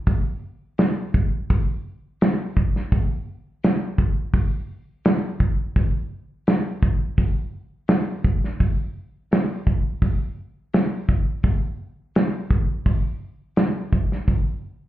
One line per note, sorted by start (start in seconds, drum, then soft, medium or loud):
0.07 kick medium
0.07 open hi-hat soft
0.78 snare loud
0.78 open hi-hat soft
1.14 kick medium
1.50 kick medium
1.50 open hi-hat soft
2.21 snare loud
2.21 open hi-hat soft
2.57 kick medium
2.76 snare soft
2.92 kick loud
2.92 open hi-hat soft
3.64 snare loud
3.64 open hi-hat medium
3.98 kick medium
4.34 kick medium
4.34 open hi-hat soft
5.05 snare loud
5.05 open hi-hat medium
5.40 kick medium
5.76 kick medium
5.76 open hi-hat soft
6.47 snare loud
6.47 open hi-hat soft
6.83 kick medium
7.18 kick medium
7.18 open hi-hat medium
7.88 snare loud
7.88 open hi-hat soft
8.24 kick medium
8.44 snare soft
8.60 kick medium
8.60 open hi-hat soft
9.32 snare loud
9.32 open hi-hat soft
9.67 kick medium
10.02 kick medium
10.02 open hi-hat medium
10.74 snare loud
10.74 open hi-hat soft
11.09 kick medium
11.43 kick medium
11.43 open hi-hat soft
12.15 snare loud
12.15 open hi-hat soft
12.51 kick medium
12.86 kick medium
12.86 open hi-hat medium
13.56 snare loud
13.56 open hi-hat soft
13.93 kick medium
14.12 snare soft
14.28 kick medium
14.28 open hi-hat soft